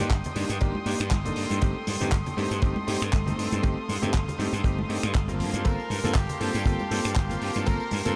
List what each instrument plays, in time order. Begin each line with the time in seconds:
Already playing: string section A#3 G5 C6 D#6
0.11 slap bass G1, kick, clap, closed hi-hat
0.24 closed hi-hat, low conga
0.35 slap bass G2, electric grand piano A#3 D4 D#4 G4, open hi-hat, high conga
0.49 slap bass G2, closed hi-hat
0.61 slap bass G1, electric grand piano A#3 D4 D#4 G4, kick, closed hi-hat
0.75 high conga
0.85 slap bass G2, electric grand piano A#3 D4 D#4 G4, open hi-hat
1.00 slap bass G2, finger snap, closed hi-hat
1.11 slap bass G1, kick, clap, closed hi-hat, high conga
1.25 electric grand piano A#3 D4 D#4 A4, closed hi-hat, low conga
1.36 slap bass G2, open hi-hat
1.50 slap bass G2, closed hi-hat, high conga
1.61 slap bass G1, electric grand piano A3 C4 D#4 G4, string section A4, kick, closed hi-hat
1.87 slap bass G2, open hi-hat, high conga
2.00 slap bass G2, electric grand piano A3 C4 D#4 G4, closed hi-hat, low conga
2.12 slap bass G1, kick, clap, closed hi-hat
2.26 closed hi-hat, low conga
2.37 slap bass G2, electric grand piano A3 C4 D#4 G4, open hi-hat, high conga
2.51 slap bass G2, closed hi-hat
2.62 slap bass G1, electric grand piano A3 C4 D#4 G4, kick, closed hi-hat
2.76 high conga
2.87 slap bass G2, electric grand piano A3 C4 D#4 G4, open hi-hat
3.02 slap bass G2, finger snap, closed hi-hat
3.13 slap bass G1, kick, clap, closed hi-hat, high conga
3.26 electric grand piano A3 C4 D#4 A4, closed hi-hat, low conga
3.38 slap bass G2, open hi-hat
3.52 slap bass G2, closed hi-hat, high conga
3.62 slap bass G1, electric grand piano A3 C4 D#4 G4, string section F5, kick, closed hi-hat
3.89 slap bass G2, open hi-hat, high conga
4.02 slap bass G2, electric grand piano A3 C4 D#4 G4, closed hi-hat, low conga
4.14 slap bass G1, kick, clap, closed hi-hat
4.28 closed hi-hat, low conga
4.38 slap bass G2, electric grand piano A3 C4 D#4 G4, open hi-hat, high conga
4.53 slap bass G2, closed hi-hat
4.63 slap bass G1, electric grand piano A3 C4 D#4 G4, kick, closed hi-hat
4.79 high conga
4.89 slap bass G2, electric grand piano A3 C4 D#4 G4, open hi-hat
5.03 slap bass G2, finger snap, closed hi-hat
5.15 slap bass G1, kick, clap, closed hi-hat, high conga
5.28 electric grand piano A#3 C4 F4 A#4, closed hi-hat, low conga
5.40 slap bass G2, string section A#3 A5 C6, open hi-hat
5.53 slap bass G2, closed hi-hat, high conga
5.59 trumpet section C5
5.64 slap bass G1, electric grand piano A#3 C4 F4 A4, trumpet section A#4, kick, closed hi-hat, tambourine
5.80 tambourine
5.90 slap bass G2, open hi-hat, high conga
6.04 slap bass G2, electric grand piano A#3 C4 F4 A4, closed hi-hat, tambourine, low conga
6.14 slap bass G1, trumpet section G4, kick, clap, closed hi-hat, tambourine
6.29 closed hi-hat, tambourine, low conga
6.40 slap bass G2, electric grand piano A#3 C4 F4 A4, trumpet section G4, open hi-hat, high conga
6.55 slap bass G2, closed hi-hat, tambourine
6.65 slap bass G1, electric grand piano A#3 C4 F4 A4, kick, closed hi-hat, tambourine
6.79 tambourine, high conga
6.91 slap bass G2, electric grand piano A#3 C4 F4 A4, open hi-hat
7.05 slap bass G2, finger snap, closed hi-hat, tambourine
7.16 slap bass G1, kick, clap, closed hi-hat, tambourine, high conga
7.30 electric grand piano A#3 C4 F4 A#4, closed hi-hat, tambourine, low conga
7.42 slap bass G2, trumpet section G4, open hi-hat
7.54 slap bass G2, closed hi-hat, tambourine, high conga
7.66 slap bass G1, electric grand piano A#3 C4 F4 A4, trumpet section A#4, kick, closed hi-hat, tambourine
7.80 tambourine
7.91 slap bass G2, open hi-hat, high conga
8.05 slap bass G2, electric grand piano A#3 C4 F4 A4, closed hi-hat, tambourine, low conga